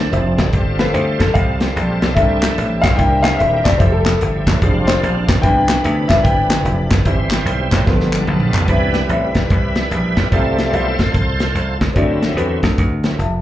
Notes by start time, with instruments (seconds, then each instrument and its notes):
Already playing: tonewheel organ F3 C4 D4 A4, upright piano C5
0.12 slap bass F1, upright piano F3 C4 E4, closed hi-hat
0.38 slap bass F#1, kick, snare, closed hi-hat
0.53 slap bass G1, tonewheel organ G3 C4 F4 A4, kick, closed hi-hat
0.79 upright piano A3 C4 F4 B4, snare, closed hi-hat
0.94 slap bass D2, upright piano C5, closed hi-hat
1.19 slap bass B1, upright piano A4, kick, snare, closed hi-hat
1.34 slap bass C2, upright piano F5, kick, closed hi-hat
1.60 snare, closed hi-hat
1.76 slap bass A#1, closed hi-hat
2.02 slap bass B1, snare, closed hi-hat
2.14 slap bass C2, tonewheel organ G3 C4 E4 A4, upright piano A3 D4 E4 E5, kick, closed hi-hat
2.43 snare, clap, closed hi-hat
2.58 slap bass A1, closed hi-hat
2.82 slap bass B1, upright piano F5, kick, snare, clap, closed hi-hat
2.96 slap bass C2, tonewheel organ G3 C4 E4 A4, upright piano A#3 D4 E4 G5, kick, closed hi-hat
3.03 tonewheel organ A#4
3.23 upright piano F5, snare, clap, closed hi-hat
3.37 slap bass D#1, upright piano E5, closed hi-hat
3.64 slap bass E1, upright piano D5, kick, snare, clap, closed hi-hat
3.78 slap bass F1, tonewheel organ F3 A3 E4 G4, upright piano G3 A3 E4 C5, kick, closed hi-hat
3.92 upright piano A4
4.06 snare, clap, closed hi-hat
4.21 slap bass G1, closed hi-hat
4.47 slap bass A1, kick, snare, clap, closed hi-hat
4.62 slap bass F1, tonewheel organ F3 C4 D4 F4, upright piano G3 G#3 D4, kick, closed hi-hat
4.87 upright piano C5, snare, clap, closed hi-hat
5.03 slap bass A#1, closed hi-hat
5.29 slap bass B1, kick, snare, clap, closed hi-hat
5.42 slap bass C2, tonewheel organ C3 E3 D4 B4, upright piano E3 B3 D4 G5, kick, closed hi-hat
5.69 snare, clap, closed hi-hat
5.84 slap bass D2, closed hi-hat
6.08 slap bass C2, upright piano E5, kick, snare, clap, closed hi-hat
6.24 slap bass G1, upright piano G5, kick, closed hi-hat
6.50 snare, clap, closed hi-hat
6.65 slap bass F1, closed hi-hat
6.91 slap bass F#1, kick, snare, clap, closed hi-hat
7.05 slap bass G1, upright piano E3 G3 C4, tonewheel organ G3 C4 D#4 C5, kick, closed hi-hat
7.10 tonewheel organ E4
7.31 snare, clap, closed hi-hat
7.45 slap bass B1, closed hi-hat
7.72 slap bass A1, kick, snare, clap, closed hi-hat
7.86 slap bass G1, upright piano F3 A3 B3, tonewheel organ G3 A#3 F4 A4, kick, snare
7.92 tonewheel organ B3
8.00 snare
8.13 clap, high tom
8.20 high tom
8.27 slap bass A#1, mid tom
8.40 mid tom
8.54 slap bass B1, clap, floor tom
8.60 floor tom
8.68 slap bass C2, upright piano C3 C4 G4 B4 E5, tonewheel organ E3 G3 B3 D4 E4 B4, kick, closed hi-hat
8.94 snare, closed hi-hat
9.08 slap bass A1, upright piano C4 G4 B4 E5, closed hi-hat
9.35 slap bass B1, kick, snare, closed hi-hat
9.50 slap bass C2, kick, closed hi-hat
9.75 snare, closed hi-hat
9.91 slap bass A#1, closed hi-hat
10.17 slap bass B1, kick, snare, closed hi-hat
10.32 slap bass C2, upright piano C3 C4 F4 A4 E5, tonewheel organ G3 A3 E4 F4 A4 C5, kick, closed hi-hat
10.59 snare, closed hi-hat
10.72 slap bass B1, upright piano C4 F4 G4 F5, closed hi-hat
10.78 upright piano A4
10.99 slap bass A1, kick, snare, closed hi-hat
11.14 slap bass C2, kick, closed hi-hat
11.40 snare, closed hi-hat
11.55 slap bass C2, closed hi-hat
11.81 slap bass C#2, kick, snare, closed hi-hat
11.94 slap bass D2, upright piano D3 C4 F#4 A4 D5, tonewheel organ F#3 C4 E4, kick, closed hi-hat
12.22 snare, closed hi-hat
12.35 slap bass E2, upright piano C4 F#4 A4 B4, closed hi-hat
12.63 slap bass D2, kick, snare, closed hi-hat
12.78 slap bass D2, kick, closed hi-hat
13.04 tonewheel organ F#3 C4 E4, snare, closed hi-hat
13.19 slap bass F1, upright piano E5 A5, closed hi-hat